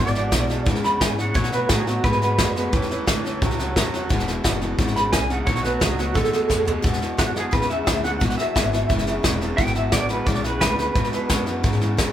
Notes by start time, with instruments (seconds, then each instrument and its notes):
Already playing: upright bass G#1, steel-string acoustic guitar E2 B2 E3 G#3, clean electric guitar D5
0.00 clean electric guitar E2 B2, steel-string acoustic guitar D4 E4
0.07 snare
0.14 clean electric guitar E2 B2, steel-string acoustic guitar E3 G#3 D4 E4, snare
0.31 upright bass B1, clean electric guitar E2 B2, steel-string acoustic guitar E3 G#3 D4 E4, kick, snare, hi-hat pedal
0.48 clean electric guitar E2 B2, steel-string acoustic guitar E3 G#3 D4 E4, snare
0.65 steel-string acoustic guitar E2 B2 E3 G#3 D4 E4, upright bass E2, clean electric guitar E2 C#3, kick, snare
0.75 snare
0.83 clean electric guitar E2 C#3 B5, steel-string acoustic guitar E3 G#3 D4 E4, snare
1.00 clean electric guitar E2 C#3 G#5, upright bass G#2, steel-string acoustic guitar E3 G#3 D4 E4, kick, snare, hi-hat pedal
1.17 clean electric guitar E2 C#3 F#5, steel-string acoustic guitar E3 G#3 D4 E4, snare
1.34 steel-string acoustic guitar B2 D#3 A3 B3 F#4, upright bass B2, clean electric guitar B2 F#3 C#5, kick, snare
1.44 snare
1.52 clean electric guitar B2 F#3 B4, steel-string acoustic guitar A3 B3 F#4, snare
1.69 upright bass A2, clean electric guitar B2 F#3 G#4, steel-string acoustic guitar D#3 A3 B3 F#4, kick, snare, hi-hat pedal
1.87 clean electric guitar B2 F#3 F#4, steel-string acoustic guitar A3 B3 F#4, snare
2.04 upright bass G#2, clean electric guitar B2 G#3 B4, steel-string acoustic guitar B2 D#3 A3 B3 F#4, kick, snare
2.13 snare
2.21 clean electric guitar B2 G#3, steel-string acoustic guitar A3 B3 F#4, snare
2.38 upright bass F#2, clean electric guitar B2 G#3, steel-string acoustic guitar D#3 A3 B3 F#4, kick, snare, hi-hat pedal
2.55 clean electric guitar B2 G#3, steel-string acoustic guitar A3 B3 F#4, snare
2.72 upright bass E2, steel-string acoustic guitar A2 E3 G3 C#4 E4, clean electric guitar A2 E3, kick, snare
2.82 snare
2.89 clean electric guitar A2 E3, steel-string acoustic guitar G3 C#4 E4, snare
3.07 upright bass D2, clean electric guitar A2 E3, steel-string acoustic guitar E3 G3 C#4 E4, kick, snare, hi-hat pedal
3.25 clean electric guitar A2 E3, steel-string acoustic guitar G3 C#4 E4, snare
3.42 upright bass C#2, steel-string acoustic guitar A2 E3 G3 C#4 E4, clean electric guitar A2 F#3, kick, snare
3.51 snare
3.59 clean electric guitar A2 F#3, steel-string acoustic guitar G3 C#4 E4, snare
3.76 upright bass E2, clean electric guitar A2 F#3, steel-string acoustic guitar E3 G3 C#4 E4, kick, snare, hi-hat pedal
3.93 clean electric guitar A2 F#3, steel-string acoustic guitar G3 C#4 E4, snare
4.09 upright bass E1, steel-string acoustic guitar E2 B2 E3 G#3 D4 E4, clean electric guitar E2 B2, kick, snare
4.19 snare
4.27 clean electric guitar E2 B2, steel-string acoustic guitar E3 G#3 D4 E4, snare
4.44 upright bass F#1, clean electric guitar E2 B2, steel-string acoustic guitar E3 G#3 D4 E4, kick, snare, hi-hat pedal
4.61 clean electric guitar E2 B2, steel-string acoustic guitar E3 G#3 D4 E4, snare
4.78 upright bass G#1, steel-string acoustic guitar E2 B2 E3 G#3 D4 E4, clean electric guitar E2 C#3, kick, snare
4.87 snare
4.96 clean electric guitar E2 C#3 B5, steel-string acoustic guitar E3 G#3 D4 E4, snare
5.12 upright bass C2, clean electric guitar E2 C#3 G#5, steel-string acoustic guitar E3 G#3 D4 E4, kick, snare, hi-hat pedal
5.28 clean electric guitar E2 C#3 F#5, steel-string acoustic guitar E3 G#3 D4 E4, snare
5.46 upright bass B1, steel-string acoustic guitar B2 D#3 A3 B3 F#4, clean electric guitar B2 F#3 C#5, kick, snare
5.56 snare
5.62 clean electric guitar B2 F#3 B4, steel-string acoustic guitar A3 B3 F#4, snare
5.80 upright bass C#2, clean electric guitar B2 F#3 G#4, steel-string acoustic guitar D#3 A3 B3 F#4, kick, snare, hi-hat pedal
5.98 clean electric guitar B2 F#3 F#4, steel-string acoustic guitar A3 B3 F#4, snare
6.14 upright bass D#2, steel-string acoustic guitar B2 D#3 A3 B3 F#4, clean electric guitar B2 G#3 A4, kick, snare
6.24 snare
6.32 clean electric guitar B2 G#3, steel-string acoustic guitar A3 B3 F#4, snare
6.49 upright bass F2, clean electric guitar B2 G#3, steel-string acoustic guitar D#3 A3 B3 F#4, kick, snare, hi-hat pedal
6.65 clean electric guitar B2 G#3, steel-string acoustic guitar A3 B3 F#4, floor tom
6.82 steel-string acoustic guitar E2 B2 E3 G#3 D4 E4, upright bass E2, clean electric guitar E2 B2, kick, snare
6.93 snare
7.00 clean electric guitar E2 B2, steel-string acoustic guitar E3 G#3 D4 E4, snare
7.17 clean electric guitar E2 B2 F#4, upright bass F#2, steel-string acoustic guitar E3 G#3 D4 E4, kick, snare, hi-hat pedal
7.35 clean electric guitar E2 B2 G#4, steel-string acoustic guitar E3 G#3 D4 E4, snare
7.51 steel-string acoustic guitar E2 B2 E3 G#3 D4 E4, upright bass E2, clean electric guitar E2 C#3 B4, kick, snare
7.62 snare
7.69 clean electric guitar E2 C#3 E5, steel-string acoustic guitar E3 G#3 D4 E4, snare
7.86 upright bass D2, clean electric guitar E2 C#3, steel-string acoustic guitar E3 G#3 D4 E4, kick, snare, hi-hat pedal
8.03 clean electric guitar E2 C#3 F#5, steel-string acoustic guitar E3 G#3 D4 E4, snare
8.20 upright bass B1, steel-string acoustic guitar E2 B2 E3 G#3 D4 E4, clean electric guitar E2 B2, kick, snare
8.30 snare
8.37 clean electric guitar E2 B2 E5, steel-string acoustic guitar E3 G#3 D4 E4, snare
8.55 upright bass G#1, clean electric guitar E2 B2, steel-string acoustic guitar E3 G#3 D4 E4, kick, snare, hi-hat pedal
8.72 clean electric guitar E2 B2, steel-string acoustic guitar E3 G#3 D4 E4, snare
8.89 upright bass F#1, steel-string acoustic guitar E2 B2 E3 G#3 D4 E4, clean electric guitar E2 C#3, kick, snare
8.98 snare
9.06 clean electric guitar E2 C#3, steel-string acoustic guitar E3 G#3 D4 E4, snare
9.23 upright bass E1, clean electric guitar E2 C#3, steel-string acoustic guitar E3 G#3 D4 E4, kick, snare, hi-hat pedal
9.41 clean electric guitar E2 C#3, steel-string acoustic guitar E3 G#3 D4 E4, snare
9.57 upright bass G#1, steel-string acoustic guitar E2 B2 E3 G#3 D4 E4, clean electric guitar E2 B2 G5, kick, snare
9.67 snare
9.75 clean electric guitar E2 B2 E5, steel-string acoustic guitar E3 G#3 D4 E4, snare
9.92 upright bass A1, clean electric guitar E2 B2 D5, steel-string acoustic guitar E3 G#3 D4 E4, kick, snare, hi-hat pedal
10.09 clean electric guitar E2 B2 B4, steel-string acoustic guitar E3 G#3 D4 E4, snare
10.26 upright bass B1, steel-string acoustic guitar E2 B2 E3 G#3 D4 E4, clean electric guitar E2 C#3 D5, kick, snare
10.35 snare
10.43 clean electric guitar E2 C#3 B4, steel-string acoustic guitar E3 G#3 D4 E4, snare
10.60 upright bass D2, clean electric guitar E2 C#3 B4, steel-string acoustic guitar E3 G#3 D4 E4, kick, snare, hi-hat pedal
10.78 clean electric guitar E2 C#3, steel-string acoustic guitar E3 G#3 D4 E4, snare
10.95 steel-string acoustic guitar E2 B2 E3 G#3 D4 E4, upright bass E2, clean electric guitar E2 B2, kick, snare
11.04 snare
11.12 clean electric guitar E2 B2, steel-string acoustic guitar E3 G#3 D4 E4, snare
11.29 clean electric guitar E2 B2, upright bass F#2, steel-string acoustic guitar E3 G#3 D4 E4, kick, snare, hi-hat pedal
11.46 clean electric guitar E2 B2, steel-string acoustic guitar E3 G#3 D4 E4, snare
11.63 steel-string acoustic guitar E2 B2 E3 G#3 D4 E4, clean electric guitar E2 C#3, upright bass G#2, kick, snare
11.73 snare
11.80 clean electric guitar E2 C#3, steel-string acoustic guitar E3 G#3 D4 E4, snare
11.97 upright bass E2, clean electric guitar E2 C#3, steel-string acoustic guitar E3 G#3 D4 E4, kick, snare, hi-hat pedal